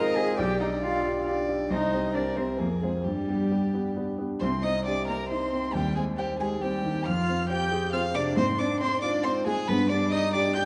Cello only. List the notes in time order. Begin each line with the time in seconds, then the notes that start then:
Already playing: A#4
0.16 G#4
0.38 G4
0.60 D#4
0.82 F4
1.70 D#4
2.14 D4
2.37 C4
2.60 A#3
2.83 G#3
3.05 G3
4.41 C4
4.64 D#4
4.87 D4
5.08 A#3
5.30 C4
5.74 G3
5.96 G#3
6.17 G3
6.40 G#3
6.62 G3
7.06 F4
7.49 G4
7.93 F4
8.15 D4
8.36 C4
8.59 D4
8.80 C4
9.02 D4
9.24 C4
9.46 G#3
9.68 B3
9.90 D4
10.12 D#4
10.34 D4
10.55 G4